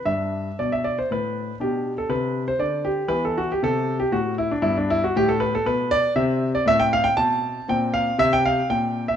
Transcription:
<<
  \new Staff \with { instrumentName = "Grand piano" } { \time 3/4 \key g \major \tempo 4 = 118 << { e''4 d''16 e''16 d''16 c''16 b'4 | g'8. a'16 b'8. c''16 d''8 g'8 | b'16 a'16 fis'16 g'16 a'8. g'16 fis'8 e'16 d'16 | e'16 d'16 e'16 fis'16 g'16 a'16 b'16 a'16 b'8 d''8 |
\key c \major e''8. d''16 e''16 g''16 f''16 g''16 a''4 | g''8 f''8 e''16 g''16 f''8 g''8. e''16 | } \\ { d'2. | d'2. | b2. | b2. |
c'2. | c'2. | } >> }
  \new Staff \with { instrumentName = "Grand piano" } { \clef bass \time 3/4 \key g \major g,4 b,4 a,4 | b,4 c4 d4 | e4 c4 a,4 | g,4 a,4 b,4 |
\key c \major c4 a,4 b,4 | bes,4 c4 bes,4 | }
>>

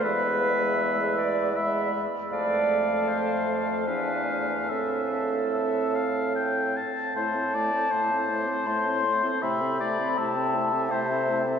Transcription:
<<
  \new Staff \with { instrumentName = "Flute" } { \time 3/4 \key a \minor \tempo 4 = 79 b''2 b''8 r8 | a''2 gis''4 | a''2~ a''8 r8 | a''2 c'''4 |
b''4 a''4 e''4 | }
  \new Staff \with { instrumentName = "Oboe" } { \time 3/4 \key a \minor e''2 e''8 r8 | f''2 f''4 | e''4 e''8 f''8 g''8 a''8 | c''8 d''8 c''2 |
e''8 d''8 e''4 c''4 | }
  \new Staff \with { instrumentName = "Clarinet" } { \time 3/4 \key a \minor b'4. d''8 e''8 r8 | d''4 c''4 b'4 | a'2~ a'8 r8 | e'16 a'16 e'16 a'16 e'16 a'16 e'16 a'16 e'16 a'16 e'16 a'16 |
e'16 a'16 e'16 a'16 e'16 a'16 e'16 a'16 e'16 a'16 e'16 a'16 | }
  \new Staff \with { instrumentName = "French horn" } { \time 3/4 \key a \minor gis2 gis8. r16 | a2 d'4 | c'2~ c'8 r8 | a16 c'16 a16 c'16 a16 c'16 a16 c'16 a16 c'16 a16 c'16 |
a16 c'16 a16 c'16 a16 c'16 a16 c'16 a16 c'16 a16 c'16 | }
  \new Staff \with { instrumentName = "Bassoon" } { \clef bass \time 3/4 \key a \minor e,2~ e,8 r8 | f,2 e,4 | a,2~ a,8 r8 | a,4 a,4 a,4 |
c4 c4 c4 | }
>>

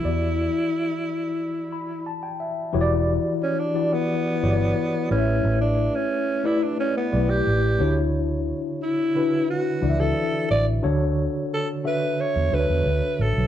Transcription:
<<
  \new Staff \with { instrumentName = "Tine electric piano" } { \time 4/4 \key e \dorian \tempo 4 = 89 << { r2 r8 b''8 a''16 g''16 e''8 | r1 | r1 | r1 |
r1 | } \\ { <e e' fis' g' d''>1 | <e e' fis' g' cis'' d''>4 r8 <e e' fis' g' d''>8 r8 <e e' fis' g' cis'' d''>4 <a e' g' b' cis'' e''>8~ | <a e' g' b' cis'' e''>4 r8 <a e' g' b' d''>8 r8 <a e' g' b' d''>4 <d d' e' fis' cis''>8~ | <d d' e' fis' cis''>4 r8 <d d' e' fis' b'>8 r8 <e d' e' fis' d'' e''>4 r8 |
<d d' fis' a' cis''>4 r8 <d d' fis' a' e''>8 r8 <d d' fis' a' b' cis''>4 r8 | } >> }
  \new Staff \with { instrumentName = "Alto saxophone" } { \time 4/4 \key e \dorian e'2. r4 | r4 cis'16 d'8 b4.~ b16 cis'8~ | cis'16 d'8 cis'8. e'16 d'16 cis'16 b8 g'4 r16 | r4 e'4 fis'8. a'8. d''8 |
r4 a'8 b'8 cis''8 b'4 a'8 | }
  \new Staff \with { instrumentName = "Fingered electric bass" } { \clef bass \time 4/4 \key e \dorian e,8. r2. r16 | e,,8. r4. r16 g,,8 r8 a,,8 | a,,8. r4. r16 b,,8 a,,8 d,8~ | d,8. r4. r16 cis,8 r8 a,,8 |
d,8. r4. e,16 d,16 e,16 d,16 r16 a,,16 b,,16 | }
>>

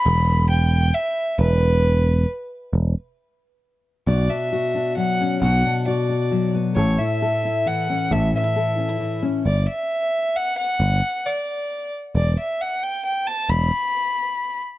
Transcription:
<<
  \new Staff \with { instrumentName = "Fiddle" } { \time 3/4 \key b \minor \tempo 4 = 134 b''4 g''4 e''4 | b'2 r4 | r2. | d''8 e''4. fis''4 |
fis''4 d''4. r8 | cis''8 e''4. fis''4 | e''8 e''2 r8 | d''8 e''4. fis''8 fis''8~ |
fis''4 d''4. r8 | d''8 e''8 fis''8 g''8 g''8 a''8 | b''2~ b''8 r8 | }
  \new Staff \with { instrumentName = "Steel-string acoustic guitar" } { \time 3/4 \key b \minor << { r2. | r2. | r2. | fis'8 d'8 fis'8 d'4 cis'8 |
fis'8 d'8 fis'8 d'4 b8 | a'8 e'8 a'8 e'4 cis'8 | a'8 cis'16 e'16 a'8 cis'16 e'8. cis'8 | r2. |
r2. | r2. | r2. | } \\ { r2. | r2. | r2. | b,2 fis4 |
b,2 fis4 | a,2 e4 | a,2 e4 | r2. |
r2. | r2. | r2. | } >> }
  \new Staff \with { instrumentName = "Picked electric bass" } { \clef bass \time 3/4 \key b \minor e,,2 r4 | e,,2 r4 | e,,8 r2 r8 | b,,8 r2 r8 |
b,,8 r2 r8 | a,,8 r2 r8 | a,,8 r2 r8 | g,,8 r2 r8 |
g,,8 r2 r8 | e,,8 r2 r8 | e,,8 r2 r8 | }
>>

